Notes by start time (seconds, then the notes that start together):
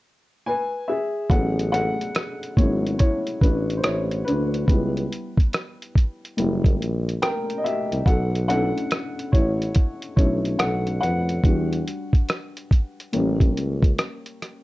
0.46 B4 G#5
0.88 G#4 E5
1.30 A1 F#3 B3 C#4 G#4 A4 F#5, kick, closed hi-hat
1.59 closed hi-hat
1.72 A4 F#5, closed hi-hat
2.01 closed hi-hat
2.15 cross-stick, closed hi-hat
2.43 closed hi-hat
2.57 G#1 F#3 G#3 B3 C#4 E4 C#5, kick, closed hi-hat
2.87 closed hi-hat
2.99 E4 C#5, kick, closed hi-hat
3.27 closed hi-hat
3.41 A1 D4 B4, kick, closed hi-hat
3.70 closed hi-hat
3.77 C5
3.83 A1 E4 C#5, cross-stick, closed hi-hat
4.11 closed hi-hat
4.25 D2 D4 B4, closed hi-hat
4.54 closed hi-hat
4.67 C#2 G3 B3 E4 B4, kick, closed hi-hat
4.97 closed hi-hat
5.12 closed hi-hat
5.37 kick, closed hi-hat
5.53 cross-stick, closed hi-hat
5.82 closed hi-hat
5.95 kick, closed hi-hat
6.25 closed hi-hat
6.37 F#1 G3 A#3 E4, closed hi-hat
6.64 kick, closed hi-hat
6.80 A#1, closed hi-hat
7.09 closed hi-hat
7.22 A#4 G5, cross-stick, closed hi-hat
7.50 closed hi-hat
7.58 D#5
7.64 G4 E5, closed hi-hat
7.92 C2, closed hi-hat
8.06 B1 A4 F#5, kick, closed hi-hat
8.35 closed hi-hat
8.48 A3 C#4 D4 E4 A4 F#5, closed hi-hat
8.78 closed hi-hat
8.91 cross-stick, closed hi-hat
9.19 closed hi-hat
9.32 A1 E4 C#5, kick, closed hi-hat
9.62 closed hi-hat
9.75 kick, closed hi-hat
10.02 closed hi-hat
10.16 B1 A3 C#4 D4 E4 C#5, kick, closed hi-hat
10.45 closed hi-hat
10.59 B1 A4 F#5, cross-stick, closed hi-hat
10.87 closed hi-hat
11.01 F2 B4 F#5, closed hi-hat
11.29 closed hi-hat
11.44 E2 G3 D4 F#4, kick, closed hi-hat
11.73 closed hi-hat
11.88 closed hi-hat
12.13 kick, closed hi-hat
12.29 cross-stick, closed hi-hat
12.57 closed hi-hat
12.71 kick, closed hi-hat
13.00 closed hi-hat
13.13 A1 G3 A#3 C#4, closed hi-hat
13.40 kick, closed hi-hat
13.56 C#2, closed hi-hat
13.83 kick, closed hi-hat
13.98 cross-stick, closed hi-hat
14.26 closed hi-hat
14.42 cross-stick, closed hi-hat